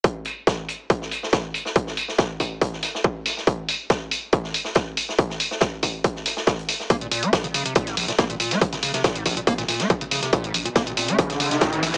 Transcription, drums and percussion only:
0.04 kick, closed hi-hat
0.25 closed hi-hat, open hi-hat
0.47 kick, snare, closed hi-hat
0.69 closed hi-hat, open hi-hat
0.90 kick, closed hi-hat
1.02 snare
1.11 closed hi-hat, open hi-hat
1.23 snare
1.33 kick, snare, closed hi-hat
1.54 closed hi-hat, open hi-hat
1.65 snare
1.75 kick, closed hi-hat
1.87 snare
1.97 closed hi-hat, open hi-hat
2.08 snare
2.18 kick, snare, closed hi-hat
2.40 kick, closed hi-hat, open hi-hat
2.61 kick, closed hi-hat
2.73 snare
2.82 snare, closed hi-hat, open hi-hat
2.95 snare
3.04 kick
3.25 snare, closed hi-hat, open hi-hat
3.37 snare
3.47 kick, closed hi-hat
3.69 closed hi-hat, open hi-hat
3.90 kick, snare, closed hi-hat
4.11 closed hi-hat, open hi-hat
4.32 kick, closed hi-hat
4.44 snare
4.54 closed hi-hat, open hi-hat
4.64 snare
4.75 kick, snare, closed hi-hat
4.97 closed hi-hat, open hi-hat
5.09 snare
5.18 kick, closed hi-hat
5.30 snare
5.40 closed hi-hat, open hi-hat
5.51 snare
5.61 kick, snare, closed hi-hat
5.82 kick, closed hi-hat, open hi-hat
6.04 kick, closed hi-hat
6.16 snare
6.25 snare, closed hi-hat, open hi-hat
6.37 snare
6.47 kick, snare, closed hi-hat
6.59 closed hi-hat
6.68 snare, closed hi-hat, open hi-hat
6.80 snare
6.90 kick, closed hi-hat
7.01 closed hi-hat
7.11 closed hi-hat, open hi-hat
7.23 closed hi-hat
7.33 kick, snare, closed hi-hat
7.44 closed hi-hat
7.54 closed hi-hat, open hi-hat
7.66 closed hi-hat
7.75 kick, closed hi-hat
7.87 snare, closed hi-hat
7.97 closed hi-hat, open hi-hat
8.08 snare, closed hi-hat
8.18 kick, snare, closed hi-hat
8.30 closed hi-hat
8.40 closed hi-hat, open hi-hat
8.51 snare, closed hi-hat
8.61 kick, closed hi-hat
8.72 snare, closed hi-hat
8.82 closed hi-hat, open hi-hat
8.94 snare, closed hi-hat
9.04 kick, snare, closed hi-hat
9.15 closed hi-hat
9.25 kick, closed hi-hat, open hi-hat
9.37 closed hi-hat
9.47 kick, closed hi-hat
9.58 snare, closed hi-hat
9.68 snare, closed hi-hat, open hi-hat
9.80 snare, closed hi-hat
9.90 kick, closed hi-hat
10.01 closed hi-hat
10.11 snare, closed hi-hat, open hi-hat
10.23 snare, closed hi-hat
10.33 kick, closed hi-hat
10.44 closed hi-hat
10.54 closed hi-hat, open hi-hat
10.66 closed hi-hat
10.75 kick, snare, closed hi-hat
10.87 closed hi-hat
10.97 closed hi-hat, open hi-hat
11.08 closed hi-hat
11.18 kick, closed hi-hat
11.30 snare, closed hi-hat
11.40 closed hi-hat, open hi-hat
11.51 snare, closed hi-hat
11.61 kick, snare, closed hi-hat
11.73 closed hi-hat
11.82 snare, closed hi-hat, open hi-hat
11.94 snare, closed hi-hat

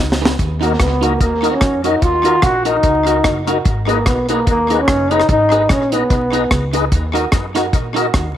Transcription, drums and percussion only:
0.12 snare
0.25 snare
0.39 kick, closed hi-hat
0.63 closed hi-hat
0.80 kick, cross-stick, closed hi-hat
1.03 closed hi-hat
1.21 kick, closed hi-hat
1.44 closed hi-hat
1.61 kick, cross-stick, closed hi-hat
1.84 closed hi-hat
2.02 kick, closed hi-hat
2.25 closed hi-hat
2.42 kick, cross-stick, closed hi-hat
2.65 closed hi-hat
2.83 kick, closed hi-hat
3.07 closed hi-hat
3.24 kick, cross-stick, closed hi-hat
3.47 closed hi-hat
3.65 kick, closed hi-hat
3.89 closed hi-hat
4.06 kick, cross-stick, closed hi-hat
4.29 closed hi-hat
4.47 kick, closed hi-hat
4.70 closed hi-hat
4.88 kick, cross-stick, closed hi-hat
5.11 closed hi-hat
5.20 cross-stick
5.29 kick, closed hi-hat
5.52 closed hi-hat
5.69 kick, cross-stick, closed hi-hat
5.92 closed hi-hat
6.10 kick, closed hi-hat
6.33 closed hi-hat
6.51 kick, cross-stick, closed hi-hat
6.73 closed hi-hat
6.92 kick, closed hi-hat
7.15 closed hi-hat
7.32 kick, cross-stick, closed hi-hat
7.55 cross-stick, closed hi-hat
7.73 kick, closed hi-hat
7.96 closed hi-hat
8.14 kick, cross-stick, closed hi-hat

